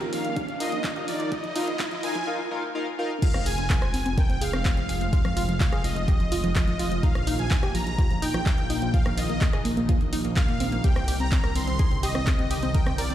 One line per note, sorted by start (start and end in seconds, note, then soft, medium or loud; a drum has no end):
0.00 2.27 A#1 medium
0.00 2.24 D#3 medium
0.00 2.24 F3 medium
0.00 2.24 A#3 medium
0.00 0.35 D#4 medium
0.00 2.23 F4 medium
0.00 0.35 F4 medium
0.00 0.07 G4 medium
0.00 0.35 A#4 medium
0.00 0.35 F5 loud
0.00 closed hi-hat soft
0.00 riser medium
0.13 0.19 F3 medium
0.13 0.62 F5 loud
0.13 open hi-hat loud
0.25 0.31 F3 medium
0.25 closed hi-hat soft
0.36 0.43 D#4 loud
0.36 kick loud
0.36 closed hi-hat medium
0.48 0.55 F3 medium
0.48 closed hi-hat soft
0.60 0.67 D#4 medium
0.60 0.73 D#4 loud
0.60 0.73 F4 medium
0.60 0.73 A#4 medium
0.60 1.05 D#5 loud
0.60 0.73 F5 loud
0.60 open hi-hat loud
0.72 0.79 F3 medium
0.72 closed hi-hat soft
0.84 0.91 F3 medium
0.84 kick loud
0.84 clap loud
0.84 closed hi-hat medium
0.96 1.30 D#4 medium
0.96 1.30 F4 medium
0.96 1.03 G4 medium
0.96 1.30 A#4 medium
0.96 1.30 F5 medium
0.96 closed hi-hat soft
1.08 1.15 F3 medium
1.08 1.30 D5 loud
1.08 open hi-hat loud
1.20 1.27 F3 medium
1.20 closed hi-hat soft
1.32 1.39 D#4 loud
1.32 1.99 D#5 loud
1.32 kick loud
1.32 closed hi-hat medium
1.44 1.50 F3 medium
1.44 closed hi-hat soft
1.56 1.62 D#4 loud
1.56 1.68 D#4 medium
1.56 1.68 F4 medium
1.56 1.68 A#4 medium
1.56 1.68 F5 loud
1.56 open hi-hat loud
1.68 1.74 F3 medium
1.68 closed hi-hat soft
1.79 1.86 D#4 loud
1.79 kick loud
1.79 clap loud
1.79 closed hi-hat medium
1.91 1.98 F3 medium
1.91 closed hi-hat soft
2.03 2.15 D#4 loud
2.03 2.10 D#4 medium
2.03 2.15 F4 medium
2.03 2.15 A#4 loud
2.03 2.15 F5 loud
2.03 2.28 G#5 loud
2.03 open hi-hat loud
2.15 2.22 F3 medium
2.15 closed hi-hat soft
2.27 2.39 D#4 medium
2.27 2.39 F4 medium
2.27 2.39 A#4 medium
2.27 2.39 F5 loud
2.51 2.63 D#4 loud
2.51 2.63 F4 medium
2.51 2.63 A#4 medium
2.51 2.63 F5 loud
2.75 2.87 D#4 loud
2.75 2.87 F4 medium
2.75 2.87 A#4 medium
2.75 2.87 F5 loud
2.99 3.11 D#4 loud
2.99 3.11 F4 loud
2.99 3.11 A#4 loud
2.99 3.11 F5 loud
3.22 7.01 F1 medium
3.22 7.00 C3 medium
3.22 10.80 F3 medium
3.22 7.00 G#3 medium
3.22 8.90 F4 medium
3.22 3.29 G#4 medium
3.22 3.47 F5 medium
3.22 kick loud
3.22 closed hi-hat loud
3.22 crash loud
3.34 3.41 C4 medium
3.34 cross-stick medium
3.34 closed hi-hat soft
3.46 3.53 G#4 loud
3.46 4.14 G#5 loud
3.46 open hi-hat loud
3.58 3.65 C4 medium
3.58 closed hi-hat soft
3.70 3.77 C4 medium
3.70 kick loud
3.70 clap loud
3.70 closed hi-hat medium
3.82 3.89 C5 loud
3.82 cross-stick medium
3.82 closed hi-hat soft
3.94 4.00 C4 medium
3.94 open hi-hat loud
4.06 4.12 C4 medium
4.06 closed hi-hat soft
4.17 4.24 A#4 medium
4.17 4.42 G5 loud
4.17 kick loud
4.17 closed hi-hat loud
4.30 4.36 C4 medium
4.30 closed hi-hat soft
4.41 4.48 G#4 loud
4.41 5.11 F5 loud
4.41 open hi-hat loud
4.53 4.60 C4 medium
4.53 cross-stick medium
4.53 closed hi-hat soft
4.65 4.72 C4 medium
4.65 kick loud
4.65 clap loud
4.65 closed hi-hat loud
4.77 4.84 C4 medium
4.77 closed hi-hat soft
4.89 4.96 G#4 medium
4.89 open hi-hat loud
5.01 5.08 C4 medium
5.01 closed hi-hat soft
5.13 5.19 F4 loud
5.13 5.59 F5 loud
5.13 kick loud
5.13 closed hi-hat medium
5.25 5.31 F3 medium
5.25 cross-stick medium
5.25 closed hi-hat soft
5.37 5.43 F4 loud
5.37 open hi-hat loud
5.49 5.55 F3 medium
5.49 closed hi-hat soft
5.60 5.67 F3 medium
5.60 5.82 F5 loud
5.60 kick loud
5.60 clap loud
5.60 closed hi-hat medium
5.72 5.79 G#4 loud
5.72 cross-stick medium
5.72 closed hi-hat soft
5.84 5.91 F3 medium
5.84 6.51 D#5 loud
5.84 open hi-hat loud
5.96 6.03 F3 medium
5.96 closed hi-hat soft
6.08 6.15 G4 medium
6.08 kick loud
6.08 closed hi-hat loud
6.20 6.27 F3 medium
6.20 closed hi-hat soft
6.32 6.39 F4 loud
6.32 open hi-hat loud
6.44 6.50 F3 medium
6.44 closed hi-hat soft
6.55 6.62 F3 medium
6.55 7.05 D#5 loud
6.55 kick loud
6.55 clap loud
6.55 closed hi-hat loud
6.68 6.74 F3 medium
6.68 closed hi-hat soft
6.79 6.86 F4 medium
6.79 open hi-hat loud
6.91 6.98 F3 medium
6.91 closed hi-hat soft
7.03 10.82 A#1 medium
7.03 13.15 D#3 medium
7.03 10.80 A#3 medium
7.03 7.10 D#4 loud
7.03 7.40 F5 loud
7.03 kick loud
7.03 closed hi-hat medium
7.15 7.22 F3 medium
7.15 cross-stick medium
7.15 closed hi-hat soft
7.27 7.34 D#4 loud
7.27 open hi-hat loud
7.39 7.46 F3 medium
7.39 7.72 G#5 loud
7.39 closed hi-hat soft
7.51 7.58 F3 medium
7.51 kick loud
7.51 clap loud
7.51 closed hi-hat medium
7.63 7.70 G4 loud
7.63 cross-stick medium
7.63 closed hi-hat soft
7.75 7.81 F3 medium
7.75 8.24 A#5 loud
7.75 open hi-hat loud
7.87 7.93 F3 medium
7.87 closed hi-hat soft
7.99 8.05 F4 medium
7.99 kick loud
7.99 closed hi-hat medium
8.11 8.17 F3 medium
8.11 closed hi-hat soft
8.22 8.29 D#4 loud
8.22 8.96 G5 loud
8.22 open hi-hat loud
8.34 8.41 F3 medium
8.34 cross-stick medium
8.34 closed hi-hat soft
8.46 8.53 F3 medium
8.46 kick loud
8.46 clap loud
8.46 closed hi-hat medium
8.58 8.65 F3 medium
8.58 closed hi-hat soft
8.70 8.77 D#4 medium
8.70 open hi-hat loud
8.82 8.89 F3 medium
8.82 closed hi-hat soft
8.94 10.82 D#4 medium
8.94 9.00 F4 loud
8.94 9.18 F5 loud
8.94 kick loud
8.94 closed hi-hat medium
9.06 9.12 A#3 medium
9.06 cross-stick medium
9.06 closed hi-hat soft
9.17 9.24 F4 loud
9.17 9.62 D#5 loud
9.17 open hi-hat loud
9.29 9.36 A#3 medium
9.29 closed hi-hat soft
9.41 9.48 A#3 medium
9.41 kick loud
9.41 clap loud
9.41 closed hi-hat medium
9.53 9.60 G#4 medium
9.53 cross-stick medium
9.53 closed hi-hat soft
9.65 9.72 A#3 medium
9.65 open hi-hat loud
9.77 9.84 A#3 medium
9.77 closed hi-hat soft
9.89 9.96 F4 medium
9.89 kick loud
9.89 closed hi-hat medium
10.01 10.08 A#3 medium
10.01 closed hi-hat soft
10.13 10.19 D#4 medium
10.13 open hi-hat loud
10.25 10.31 A#3 medium
10.25 closed hi-hat soft
10.36 10.43 A#3 medium
10.36 10.86 F5 loud
10.36 kick loud
10.36 clap loud
10.36 closed hi-hat medium
10.48 10.55 A#3 medium
10.48 closed hi-hat soft
10.60 10.67 C4 medium
10.60 open hi-hat loud
10.72 10.79 A#3 medium
10.72 closed hi-hat soft
10.84 13.15 C2 medium
10.84 13.15 C3 medium
10.84 13.15 D3 medium
10.84 12.73 G3 medium
10.84 10.91 G4 loud
10.84 11.17 G5 loud
10.84 kick loud
10.84 closed hi-hat medium
10.84 ride medium
10.96 11.03 C4 medium
10.96 cross-stick medium
10.96 closed hi-hat soft
11.08 11.15 G4 loud
11.08 open hi-hat loud
11.08 ride medium
11.20 11.27 C4 medium
11.20 11.57 A#5 loud
11.20 closed hi-hat soft
11.32 11.38 C4 medium
11.32 kick loud
11.32 clap loud
11.32 closed hi-hat medium
11.32 ride medium
11.44 11.50 A#4 loud
11.44 cross-stick medium
11.44 closed hi-hat soft
11.56 11.62 C4 medium
11.56 12.05 C6 loud
11.56 open hi-hat loud
11.56 ride medium
11.68 11.74 C4 medium
11.68 closed hi-hat soft
11.79 11.86 G#4 medium
11.79 kick loud
11.79 closed hi-hat loud
11.79 ride medium
11.91 11.98 C4 medium
11.91 closed hi-hat soft
12.03 12.10 G4 loud
12.03 12.71 D#5 loud
12.03 open hi-hat loud
12.03 ride medium
12.15 12.22 C4 medium
12.15 cross-stick medium
12.27 12.34 C4 medium
12.27 kick loud
12.27 clap loud
12.27 closed hi-hat medium
12.27 ride medium
12.39 12.46 C4 medium
12.39 closed hi-hat soft
12.51 12.57 G4 medium
12.51 open hi-hat loud
12.51 ride medium
12.63 12.69 C4 medium
12.63 closed hi-hat soft
12.74 13.15 F3 medium
12.74 12.81 A#4 loud
12.74 12.99 G5 loud
12.74 kick loud
12.74 closed hi-hat medium
12.74 ride medium
12.87 12.93 C4 medium
12.87 cross-stick medium
12.87 closed hi-hat soft
12.98 13.05 A#4 medium
12.98 13.15 D5 medium
12.98 open hi-hat loud
12.98 ride medium
13.10 13.15 C4 medium
13.10 closed hi-hat soft